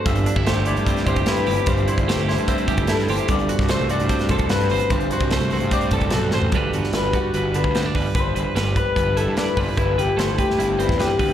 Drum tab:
HH |xxx-x-xxxxxxxxox|xxxxxxoxxxxxx-ox|xxx-x-xxxxxxxxox|xxxxxxoxxxxxx---|
SD |----o----o--o---|----o-o-----oo--|---oo----o--oo--|----o-------o-o-|
FT |----------------|----------------|----------------|---------------o|
BD |o--o----o-oo----|o--o----o-oo----|o--o----o-oo----|o--o----o-oo----|

HH |x-x-x-x-x-x-x-o-|x-x-x-x-x-x-x-o-|x-x-x-x-x-x-x-o-|
SD |---oo-------o---|----o-------o---|----o--o---oo---|
FT |----------------|----------------|----------------|
BD |o-----o----o--o-|o-----o-o-----o-|o-----o----o--o-|